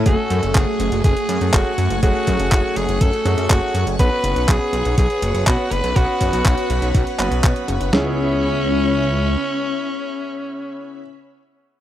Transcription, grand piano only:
\new Staff \with { instrumentName = "Grand piano" } { \time 4/4 \key cis \minor \tempo 4 = 122 <a cis' fis' gis''>2. <a cis' fis' gis'>8 r8 | <a cis' fis' gis'>2~ <a cis' fis' gis'>8 <a cis' fis' gis'>4. | <b cis' fis' b'>2. <b cis' fis' b'>8 r8 | <b cis' fis' b'>2~ <b cis' fis' b'>8 <b cis' fis' b'>4. |
<b cis' e' gis'>1~ | <b cis' e' gis'>1 | }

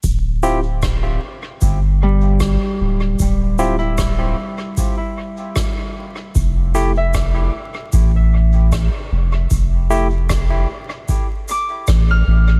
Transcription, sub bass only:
\new Staff \with { instrumentName = "Sub bass" } { \clef bass \time 4/4 \key d \minor \tempo 4 = 76 d,,4. r8 g,,4 r8 d,,8 | d,,4. r2 r8 | f,,4. r8 a,,4 r8 f,,8 | f,,4. r4. a,,8 a,,8 | }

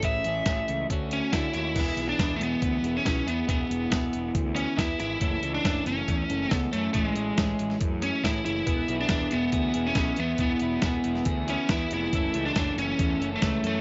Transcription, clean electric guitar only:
\new Staff \with { instrumentName = "Clean electric guitar" } { \time 4/4 \key e \mixolydian \tempo 4 = 139 <e a cis' gis'>8 <a cis' gis'>8 <e a cis' gis'>4 <a cis' fis'>8 <cis' fis'>8 <a cis' fis'>8 <cis' fis'>8 | <e b e' gis'>8 <b e' gis'>8 <e b e' gis'>4. <b e' gis'>8 <e b e' gis'>8 <b e' gis'>8 | <e b e' gis'>8 <b e' gis'>8 <e b e' gis'>4. <b e' gis'>8 <e b e' gis'>8 <b e' gis'>8 | <e a cis' a'>8 <a cis' a'>8 <e a cis' a'>4. <a cis' a'>8 <e a cis' a'>8 <a cis' a'>8 |
<e a cis' gis'>8 <a cis' gis'>8 <e a cis' gis'>4. <a cis' gis'>8 <e a cis' gis'>8 <a cis' gis'>8 | <e b e' gis'>8 <b e' gis'>8 <e b e' gis'>4. <b e' gis'>8 <e b e' gis'>8 <b e' gis'>8 | <e b e' gis'>8 <b e' gis'>8 <e b e' gis'>4. <b e' gis'>8 <e b e' gis'>8 <b e' gis'>8 | <e a cis' a'>8 <a cis' a'>8 <e a cis' a'>4. <a cis' a'>8 <e a cis' a'>8 <a cis' a'>8 | }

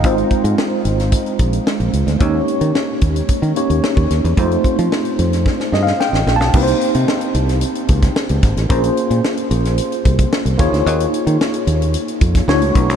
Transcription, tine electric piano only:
\new Staff \with { instrumentName = "Tine electric piano" } { \time 4/4 \key ees \mixolydian \tempo 4 = 111 << { ees''16 r2. r8. | r1 | r2 \tuplet 3/2 { r8. ees''16 f''8 g''4 a''8 } | r1 |
r1 | r1 | } \\ { <aes c' ees' f' c''>1 | <bes des' ees' g' des''>2~ <bes des' ees' g' des''>8 <bes des' ees' g' des''>4. | <aes a c' ees' f' c''>1 | <bes c' ees' g' ces'' c''>1 |
<bes des' f' aes' c''>2.~ <bes des' f' aes' c''>8 <bes ees' f' aes' des''>8~ | <bes ees' f' aes' des''>2. <a d' e' fis' cis''>4 | } >> }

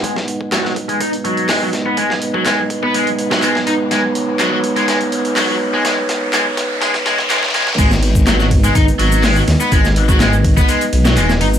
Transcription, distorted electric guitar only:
\new Staff \with { instrumentName = "Distorted electric guitar" } { \clef bass \time 4/4 \key gis \minor \tempo 4 = 124 gis16 r8. fis16 fis16 r16 gis16 dis'16 r16 fis8 gis16 fis16 r16 b16 | gis16 r8 fis16 gis16 r8 b16 gis16 r8 fis16 gis16 r16 dis'16 r16 | gis16 r8. fis16 fis16 r16 gis16 gis16 r8. fis16 fis16 r16 gis16 | gis16 r8. gis16 r8. gis16 r16 gis16 r16 gis16 r16 gis16 r16 |
gis16 r8. fis16 fis16 r16 gis16 dis'16 r16 fis8 gis16 fis16 r16 b16 | gis16 r8 fis16 gis16 r8 b16 gis16 r8 fis16 gis16 r16 dis'16 r16 | }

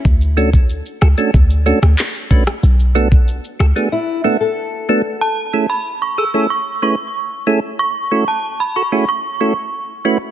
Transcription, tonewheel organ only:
\new Staff \with { instrumentName = "Tonewheel organ" } { \time 4/4 \key a \major \tempo 4 = 93 r8 <a cis' d' fis' a'>16 r8. <fis' a'>16 <a cis' d' fis' a'>16 r8 <a cis' d' fis' a'>16 r8. <a cis' d' fis' b'>16 r16 | r8 <a b d' fis' a'>16 r8. <fis' a'>16 <a b d' fis' gis'>16 r8 <a b d' fis' a'>16 r8. <a b d' fis' a'>16 r16 | r8 <a cis' e' gis' a'>16 r8. <gis' a'>16 <a cis' e' gis' a'>16 r8 <a cis' e' gis' b'>16 r8. <a cis' e' gis' a'>16 r16 | r8 <a cis' e' fis' a'>16 r8. <fis' a'>16 <a cis' e' fis' gis'>16 r8 <a cis' e' fis' a'>16 r8. <a cis' e' fis' b'>16 r16 | }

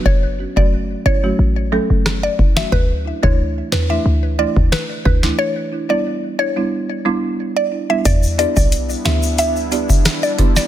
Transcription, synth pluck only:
\new Staff \with { instrumentName = "Synth pluck" } { \time 4/4 \key e \dorian \tempo 4 = 90 cis''16 r8 d''16 r8 cis''16 r4. d''16 r16 e''16 | b'16 r8 cis''16 r8 b'16 e''16 r8 d''16 r16 b'16 r16 b'16 r16 | cis''16 r8 d''16 r8 cis''16 r4. d''16 r16 e''16 | d''16 r16 d''16 d''8 r16 e''8 e''8. r8 d''16 r16 d''16 | }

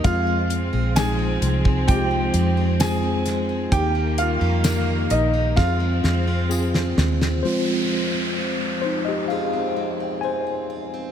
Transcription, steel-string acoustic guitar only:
\new Staff \with { instrumentName = "Steel-string acoustic guitar" } { \time 4/4 \key f \minor \tempo 4 = 65 <f, aes'>16 aes16 c'16 aes'16 f16 c'16 aes16 c'16 f,16 aes16 c'16 aes'16 f16 c'16 aes16 c'16 | <ees g'>16 bes16 ees'16 g'16 bes16 ees'16 bes16 ees'16 <f, f'>16 aes16 c'16 f'16 f16 c'16 aes16 c'16 | <f, f'>16 c'16 aes16 c'16 f'16 c'8 c'16 <f, f'>16 c'16 aes16 c'16 f'16 c'16 f'16 c'16 | }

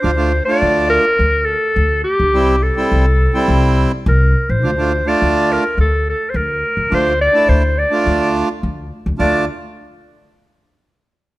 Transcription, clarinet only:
\new Staff \with { instrumentName = "Clarinet" } { \time 4/4 \key d \minor \tempo 4 = 105 c''8. d''8. bes'4 a'4 g'8~ | g'8 a'2 r8 bes'8. c''16~ | c''8. d''8. bes'8 a'8 a'16. c''32 bes'4 | c''8 d''8 c''8 d''4 r4. |
d''8 r2. r8 | }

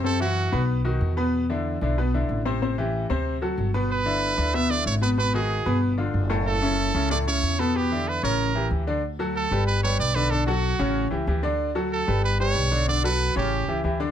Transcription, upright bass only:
\new Staff \with { instrumentName = "Upright bass" } { \clef bass \time 4/4 \key d \major \tempo 4 = 187 fis,4. b,,4. e,4~ | e,4. b,,4. a,,4~ | a,,4. d,4. g,,4~ | g,,4. d,4. gis,,4~ |
gis,,4. g,,4. fis,,4~ | fis,,4. cis,4. e,4~ | e,4. a,,4. d,4~ | d,4. g,,4. b,,4~ |
b,,4. a,,4 cis,8 d,4~ | d,4. g,,4. b,,4~ | b,,4. a,,4 cis,8 d,4 | }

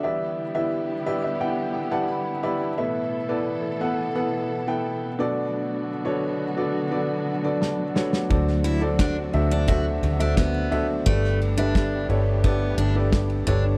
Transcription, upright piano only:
\new Staff \with { instrumentName = "Upright piano" } { \time 4/4 \key d \major \tempo 4 = 87 << { e4. r16 e''16 fis''8 g''16 a''16 b''8 b''8 | a,4. r2 b,8~ | b,4 r2 a''8 fis''8 | d4. r2 r8 |
g,4. r2 r8 | } \\ { <e' g' b' d'' e''>8 r16 <e' g' b' d'' e''>8 r16 <e' g' b' d'' e''>16 r16 <e' g' b' d'' g''>8 r16 <e' g' b' d'' fis''>8 r16 <e' g' b' d'' e''>16 r16 | <b e' a' b' e''>8 r16 <b e' a' b' d''>8 r16 <b e' a' b' fis''>16 r16 <b e' a' b' fis''>8 r16 <b e' a' b' g''>8 r16 <d' fis' a' b' d''>8~ | <d' fis' a' b' d''>8 r16 <d' fis' a' b' cis''>8 r16 <d' fis' a' b' d''>16 r16 <d' fis' a' b' d''>8 r16 <d' fis' a' b' d''>8 r16 <d' fis' a' b' cis''>16 r16 | <d' fis' a' c'' d''>8 r16 <d' fis' a' c'' d''>8 r16 <d' fis' a' c'' e''>16 r16 <d' fis' a' c'' e''>8 r16 <d' fis' a' c'' e''>8 r16 <d' fis' a' c'' e''>16 r16 |
<d' g' a' b' d''>8 r16 <d' g' a' b' e''>8 r16 <d' g' a' b' cis''>16 r16 <d' g' a' b' d''>8 r16 <d' g' a' b' d''>8 r16 <d' g' a' b' cis''>16 r16 | } >> }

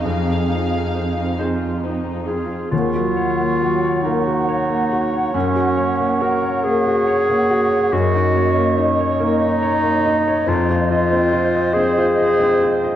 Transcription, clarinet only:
\new Staff \with { instrumentName = "Clarinet" } { \time 6/8 \key ees \dorian \tempo 4. = 47 r2 r8 aes'8 | f'4. ees'4. | des'4 bes'8 aes'4. | ges'4 r8 ees'4. |
f'8 f'4 aes'4. | }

